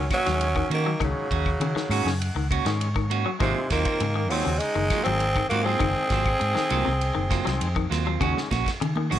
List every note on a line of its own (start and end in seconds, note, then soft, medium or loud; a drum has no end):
0.00 0.19 D#3 medium
0.11 0.68 F#3 loud
0.11 0.29 A#3 medium
0.11 0.29 C#4 medium
0.11 0.29 F#4 medium
0.11 kick medium
0.11 snare soft
0.11 ride bell medium
0.11 claves medium
0.15 0.69 C#4 medium
0.25 0.61 D#2 medium
0.25 0.48 D#3 medium
0.25 0.49 F#3 medium
0.25 0.48 G#3 medium
0.25 0.49 C#4 medium
0.25 snare soft
0.25 ride bell medium
0.41 ride bell medium
0.56 0.78 D#3 medium
0.56 kick medium
0.56 claves medium
0.70 0.94 D#3 medium
0.70 1.00 D#3 medium
0.70 0.89 A#3 medium
0.70 1.00 A#3 medium
0.70 0.89 C#4 medium
0.70 0.89 F#4 medium
0.70 ride bell medium
0.86 0.97 F#3 medium
1.00 1.12 C#2 medium
1.00 1.28 D#3 medium
1.00 1.23 D#3 loud
1.00 2.17 F#3 medium
1.00 1.29 G#3 medium
1.00 1.29 C#4 medium
1.00 kick medium
1.00 ride bell soft
1.00 claves medium
1.04 2.18 C#3 medium
1.31 1.54 D#2 medium
1.31 1.49 C#4 medium
1.31 1.49 F#4 medium
1.31 kick medium
1.31 ride bell medium
1.46 kick medium
1.46 claves medium
1.60 1.73 C#3 medium
1.60 1.72 D#3 loud
1.60 ride bell medium
1.75 1.98 D#3 medium
1.75 muted fingered electric bass stroke soft
1.75 snare soft
1.89 2.02 G#2 loud
1.89 2.14 D#3 medium
1.89 2.14 G#3 medium
1.89 2.09 A#3 medium
1.89 2.09 C#4 medium
1.89 2.14 C#4 loud
1.89 2.09 F#4 medium
1.89 2.05 A#5 medium
1.89 open hi-hat medium
1.89 claves medium
2.05 2.29 F#2 medium
2.05 2.29 C#3 medium
2.05 2.19 G#5 medium
2.05 snare soft
2.19 2.48 F#5 medium
2.19 ride bell medium
2.35 2.59 C#2 medium
2.35 2.58 D#3 medium
2.51 2.69 A#3 medium
2.51 2.69 C#4 medium
2.51 2.69 F#4 medium
2.51 2.79 C#5 medium
2.51 kick medium
2.51 ride bell medium
2.51 claves medium
2.65 3.24 G#2 medium
2.65 2.89 D#3 loud
2.65 2.89 D#3 medium
2.65 2.89 G#3 medium
2.65 2.90 C#4 loud
2.65 snare soft
2.65 ride bell medium
2.81 3.37 C#5 medium
2.81 ride bell medium
2.96 3.18 D#3 medium
2.96 kick medium
2.96 claves medium
3.10 3.28 A#3 medium
3.10 3.29 C#4 medium
3.10 3.29 F#4 medium
3.10 ride bell medium
3.26 3.37 F#3 medium
3.39 3.52 G#1 loud
3.39 3.69 C3 medium
3.39 3.68 D#3 medium
3.39 3.63 D#3 medium
3.39 3.58 F#3 medium
3.39 3.68 G#3 medium
3.39 3.69 G#3 medium
3.39 3.59 A#3 medium
3.39 3.68 C4 medium
3.39 3.59 C4 medium
3.39 3.59 F4 medium
3.39 kick medium
3.39 ride bell soft
3.39 claves medium
3.70 3.83 D#2 medium
3.70 4.31 D#3 medium
3.70 3.86 F#3 medium
3.70 3.86 A#3 medium
3.70 4.33 A#3 medium
3.70 3.85 C4 medium
3.70 3.84 F4 medium
3.70 kick medium
3.70 snare soft
3.70 ride bell medium
3.85 4.04 A#3 soft
3.85 4.04 C4 soft
3.85 4.04 F4 medium
3.85 kick medium
3.85 ride bell medium
3.85 claves medium
4.00 4.30 G#2 medium
4.00 4.13 C#3 medium
4.00 ride bell medium
4.16 4.38 D#3 medium
4.29 4.42 D#2 medium
4.29 4.53 D#3 medium
4.29 4.60 F#3 medium
4.29 4.49 F#3 medium
4.29 4.53 G#3 medium
4.29 4.49 A#3 medium
4.29 4.62 C4 medium
4.29 4.49 C4 medium
4.29 4.54 D#4 medium
4.29 4.49 F4 medium
4.29 open hi-hat medium
4.29 claves medium
4.45 4.58 D#2 medium
4.45 4.68 C#3 medium
4.58 5.05 G#3 loud
4.58 5.06 D#4 medium
4.58 ride bell medium
4.75 4.87 F#1 loud
4.75 4.98 D#3 medium
4.90 5.09 F#3 medium
4.90 5.09 A#3 medium
4.90 5.09 F4 medium
4.90 kick medium
4.90 snare soft
4.90 ride bell medium
4.90 claves medium
5.04 5.41 G#1 medium
5.04 5.29 D#3 medium
5.04 5.28 F#3 medium
5.04 5.29 G#3 medium
5.04 5.29 A#3 medium
5.04 5.49 C4 loud
5.04 5.49 G#4 loud
5.04 ride bell soft
5.20 ride bell medium
5.36 5.59 D#3 medium
5.36 kick medium
5.36 claves medium
5.49 5.74 G#2 loud
5.49 5.66 F#3 medium
5.49 5.66 A#3 loud
5.49 5.66 A#3 medium
5.49 5.66 C4 medium
5.49 5.65 F4 medium
5.49 5.64 F#4 medium
5.49 ride bell medium
5.63 5.77 F#3 medium
5.63 7.90 C4 loud
5.63 5.84 F4 medium
5.63 7.89 G#4 loud
5.67 5.85 A#3 soft
5.67 5.84 C4 soft
5.79 5.92 F#1 medium
5.79 6.08 D#3 medium
5.79 6.02 D#3 loud
5.79 6.08 G#3 medium
5.79 6.08 D#4 medium
5.79 kick medium
5.79 ride bell soft
5.79 claves medium
6.10 6.34 G#1 medium
6.10 6.29 F#3 medium
6.10 6.29 A#3 medium
6.10 6.29 C4 medium
6.10 6.30 F4 medium
6.10 kick medium
6.10 snare soft
6.10 ride bell medium
6.26 kick medium
6.26 claves medium
6.40 6.53 G#2 loud
6.40 muted clean electric guitar stroke medium
6.40 ride bell medium
6.55 6.78 D#3 medium
6.55 muted fingered electric bass stroke soft
6.55 snare soft
6.68 6.83 C2 medium
6.68 6.93 D#3 medium
6.68 6.89 F#3 medium
6.68 6.93 G#3 medium
6.68 6.94 A#3 medium
6.68 6.89 A#3 medium
6.68 6.89 C4 medium
6.68 6.89 F4 medium
6.68 ride bell medium
6.68 claves medium
6.85 7.10 C2 medium
6.85 7.08 C3 medium
7.01 ride bell medium
7.15 7.39 F#1 medium
7.15 7.38 D#3 medium
7.30 7.48 F#3 medium
7.30 7.49 A#3 medium
7.30 7.49 C4 medium
7.30 7.49 F4 medium
7.30 kick medium
7.30 snare soft
7.30 ride bell medium
7.30 claves medium
7.45 7.58 C2 medium
7.45 7.68 D#3 medium
7.45 7.68 F#3 medium
7.45 7.69 G#3 medium
7.45 7.69 C4 loud
7.45 snare soft
7.45 ride bell medium
7.61 7.88 F2 medium
7.61 ride bell medium
7.76 7.98 D#3 medium
7.76 kick medium
7.76 claves medium
7.90 8.18 D#2 medium
7.90 8.05 F#3 medium
7.90 8.05 A#3 medium
7.90 8.05 C4 medium
7.90 8.04 F4 medium
7.90 snare soft
7.90 ride bell medium
8.05 8.18 F#3 medium
8.05 8.19 A#3 soft
8.05 8.20 C4 soft
8.05 8.20 F4 medium
8.20 8.33 D#2 loud
8.20 8.43 C#3 medium
8.20 8.49 D#3 medium
8.20 8.49 G#3 medium
8.20 8.38 A#3 medium
8.20 8.39 C#4 medium
8.20 8.50 C#4 medium
8.20 8.39 F#4 loud
8.20 kick medium
8.20 ride bell medium
8.20 high conga soft
8.20 claves medium
8.37 snare soft
8.51 8.63 A#1 medium
8.51 8.69 A#3 medium
8.51 8.69 C#4 medium
8.51 8.69 F#4 medium
8.51 kick medium
8.51 snare soft
8.51 ride bell medium
8.51 high conga medium
8.66 muted fingered electric bass stroke soft
8.66 kick medium
8.66 snare soft
8.66 ride bell medium
8.66 claves medium
8.81 8.92 C#3 medium
8.81 9.13 D#3 medium
8.81 ride bell medium
8.81 high conga soft
8.96 9.19 D#3 medium
8.96 high conga medium
9.10 9.19 A#1 loud
9.10 9.19 D#3 medium
9.10 9.19 G#3 medium
9.10 9.19 A#3 medium
9.10 9.19 C#4 medium
9.10 9.19 F#4 medium
9.10 open hi-hat medium
9.10 low conga medium
9.10 claves medium